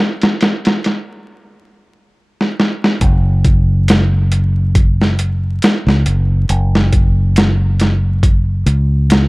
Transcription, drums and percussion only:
0.22 snare, closed hi-hat
0.41 snare, closed hi-hat
0.65 snare, closed hi-hat
0.84 snare, closed hi-hat
2.41 snare
2.60 snare
2.84 snare
3.01 kick, closed hi-hat
3.45 kick, closed hi-hat
3.88 snare, closed hi-hat
4.32 closed hi-hat
4.75 kick, closed hi-hat
5.01 snare
5.19 closed hi-hat
5.62 snare, closed hi-hat
5.89 snare
6.06 closed hi-hat
6.49 closed hi-hat
6.75 snare
6.93 kick, closed hi-hat
7.36 snare, closed hi-hat
7.80 snare, closed hi-hat
8.23 kick, closed hi-hat
8.67 closed hi-hat
9.10 snare, closed hi-hat

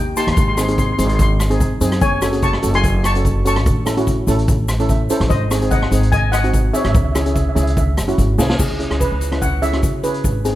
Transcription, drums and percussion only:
0.17 closed hi-hat, shaker
0.27 cross-stick, closed hi-hat
0.37 kick, closed hi-hat, shaker
0.57 cross-stick, closed hi-hat, shaker
0.68 closed hi-hat, shaker
0.78 kick, closed hi-hat, shaker
0.98 closed hi-hat, shaker
1.09 closed hi-hat, shaker
1.19 kick, closed hi-hat, shaker
1.40 cross-stick, closed hi-hat, shaker
1.50 closed hi-hat, shaker
1.60 kick, closed hi-hat, shaker
1.81 closed hi-hat, shaker
1.92 cross-stick, closed hi-hat, shaker
2.01 kick, closed hi-hat, shaker
2.22 cross-stick, closed hi-hat, shaker
2.33 closed hi-hat, shaker
2.42 kick, closed hi-hat, shaker
2.53 cross-stick
2.62 closed hi-hat, shaker
2.74 closed hi-hat
2.83 kick, closed hi-hat, shaker
3.04 cross-stick, closed hi-hat, shaker
3.15 closed hi-hat, shaker
3.25 kick, closed hi-hat, shaker
3.45 closed hi-hat, shaker
3.56 cross-stick, closed hi-hat
3.66 kick, closed hi-hat, shaker
3.86 cross-stick, closed hi-hat, shaker
3.97 closed hi-hat, shaker
4.07 kick, closed hi-hat, shaker
4.28 closed hi-hat, shaker
4.38 closed hi-hat
4.48 kick, closed hi-hat, shaker
4.68 cross-stick, closed hi-hat, shaker
4.80 closed hi-hat, shaker
4.89 kick, closed hi-hat, shaker
5.10 closed hi-hat, shaker
5.21 cross-stick, closed hi-hat
5.30 kick, closed hi-hat, shaker
5.51 cross-stick, closed hi-hat, shaker
5.62 closed hi-hat, shaker
5.71 kick, closed hi-hat, shaker
5.82 cross-stick
5.92 closed hi-hat, shaker
6.03 closed hi-hat
6.12 kick, closed hi-hat, shaker
6.33 cross-stick, closed hi-hat, shaker
6.44 closed hi-hat
6.53 kick, closed hi-hat, shaker
6.74 closed hi-hat, shaker
6.84 cross-stick, closed hi-hat
6.94 kick, closed hi-hat, shaker
7.15 cross-stick, closed hi-hat, shaker
7.26 closed hi-hat, shaker
7.35 kick, closed hi-hat, shaker
7.56 closed hi-hat, shaker
7.67 closed hi-hat
7.77 kick, closed hi-hat, shaker
7.97 cross-stick, closed hi-hat, shaker
8.08 closed hi-hat, shaker
8.18 kick, closed hi-hat, shaker
8.39 snare, shaker
8.49 snare
8.59 kick, crash, shaker
8.80 closed hi-hat
8.91 cross-stick, closed hi-hat
9.01 kick, closed hi-hat, shaker
9.21 closed hi-hat, shaker
9.32 cross-stick, closed hi-hat
9.41 kick, closed hi-hat, shaker
9.62 closed hi-hat, shaker
9.73 cross-stick, closed hi-hat
9.83 kick, closed hi-hat, shaker
10.03 closed hi-hat, shaker
10.14 closed hi-hat
10.24 kick, closed hi-hat, shaker
10.45 closed hi-hat, shaker

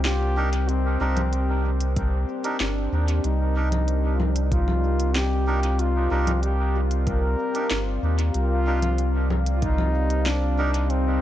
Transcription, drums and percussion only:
0.05 snare, closed hi-hat
0.53 closed hi-hat
0.69 closed hi-hat
1.17 closed hi-hat, low conga
1.33 closed hi-hat
1.80 closed hi-hat
1.96 kick, closed hi-hat
2.44 closed hi-hat
2.60 snare, closed hi-hat
3.08 closed hi-hat
3.24 closed hi-hat
3.72 closed hi-hat, low conga
3.88 closed hi-hat
4.20 low conga
4.36 closed hi-hat
4.52 kick, closed hi-hat
4.68 low conga
5.00 closed hi-hat
5.16 snare, closed hi-hat
5.63 closed hi-hat
5.79 closed hi-hat
6.27 closed hi-hat, low conga
6.43 closed hi-hat
6.91 closed hi-hat
7.07 kick, closed hi-hat
7.55 closed hi-hat
7.71 snare, closed hi-hat
8.19 closed hi-hat
8.34 closed hi-hat
8.82 closed hi-hat, low conga
8.98 closed hi-hat
9.30 low conga
9.46 closed hi-hat
9.62 kick, closed hi-hat
9.78 low conga
10.10 closed hi-hat
10.26 snare, closed hi-hat
10.74 closed hi-hat
10.90 closed hi-hat

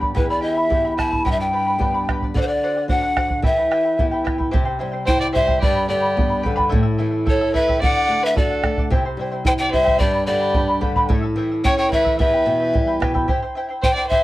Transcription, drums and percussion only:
0.02 bombo low
0.17 bombo low
0.71 bombo low
0.99 bombo rim, bombo low
1.13 bombo low
1.26 bombo low
1.81 bombo low
2.09 bombo rim, bombo low
2.22 bombo low
2.36 bombo low
2.89 bombo low
3.17 bombo rim, bombo low
3.30 bombo low
3.44 bombo low
3.72 bombo rim
3.99 bombo low
4.27 bombo rim, bombo low
4.40 bombo low
4.54 bombo low
5.08 bombo low
5.36 bombo low
5.49 bombo low
5.63 bombo low
6.18 bombo low
6.45 bombo low
6.58 bombo low
6.73 bombo low
7.27 bombo low
7.55 bombo low
7.69 bombo low
7.83 bombo low
8.37 bombo low
8.64 bombo rim, bombo low
8.78 bombo low
8.92 bombo low
9.45 bombo low
9.73 bombo low
9.87 bombo low
10.00 bombo low
10.54 bombo low
10.82 bombo low
10.96 bombo low
11.10 bombo low
11.65 bombo low
11.92 bombo low
12.06 bombo low
12.20 bombo low
12.75 bombo low
13.02 bombo rim, bombo low
13.16 bombo low
13.29 bombo low
13.84 bombo low
14.12 bombo low

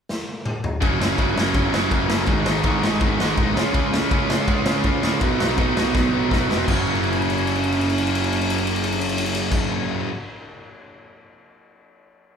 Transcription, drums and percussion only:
0.09 snare
0.46 mid tom
0.64 floor tom
0.82 kick, ride
1.02 snare
1.18 kick, ride
1.38 snare
1.54 kick, ride
1.74 snare
1.91 kick, ride
2.10 snare
2.26 kick, ride
2.46 snare
2.63 kick, ride
2.84 snare
3.00 kick, ride
3.20 snare
3.37 kick, ride
3.57 snare
3.74 kick, ride
3.94 snare
4.11 kick, ride
4.30 snare
4.48 kick, ride
4.66 snare
4.84 kick, ride
5.03 snare
5.21 kick, ride
5.40 snare
5.58 kick, ride
5.77 snare
5.95 kick, snare
6.31 kick, snare
6.51 snare
6.68 kick, crash
6.87 crash
6.95 ride
7.03 crash
7.13 ride
7.22 crash
7.30 ride
7.38 crash
7.47 ride
7.55 crash
7.64 ride
7.72 crash
7.81 ride
7.90 crash
7.98 ride
8.07 crash
8.15 ride
8.24 crash
8.33 ride
8.41 crash
8.50 ride
8.58 crash
8.67 ride
8.76 crash
8.84 ride
8.92 crash
9.01 ride
9.09 crash
9.18 ride
9.26 crash
9.35 ride
9.51 kick, crash

